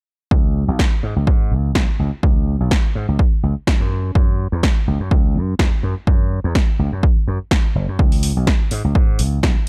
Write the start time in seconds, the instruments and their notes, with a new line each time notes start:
0.31 slap bass C#2, kick
0.68 slap bass B1
0.79 kick, snare
1.03 slap bass G#2
1.16 slap bass C#2
1.27 kick
1.51 slap bass C#2
1.75 slap bass B1, kick, snare
1.99 slap bass C#2
2.23 slap bass C#2, kick
2.60 slap bass B1
2.71 kick, snare
2.95 slap bass G#2
3.08 slap bass C#2
3.19 kick
3.32 muted slap bass stroke
3.43 slap bass C#2
3.67 kick, snare
3.80 slap bass F#2
4.15 slap bass F#2, kick
4.52 slap bass E2
4.63 kick, snare
4.88 slap bass C#2
5.00 slap bass F#2
5.11 slap bass C#2, kick
5.35 slap bass F#2
5.59 slap bass E2, kick, snare
5.83 slap bass F#2
6.07 slap bass F#2, kick
6.44 slap bass E2
6.55 kick, snare
6.79 slap bass C#2
6.92 slap bass F#2
7.03 kick
7.16 muted slap bass stroke
7.28 slap bass F#2
7.51 kick, snare
7.75 slap bass F#1
7.88 slap bass F#2
7.99 slap bass C#2, kick
8.12 open hi-hat
8.23 open hi-hat
8.37 slap bass B1
8.47 kick, snare
8.71 slap bass G#2, open hi-hat
8.84 slap bass C#2
8.95 slap bass G#2, kick
9.19 slap bass C#2, open hi-hat
9.43 slap bass B1, kick, snare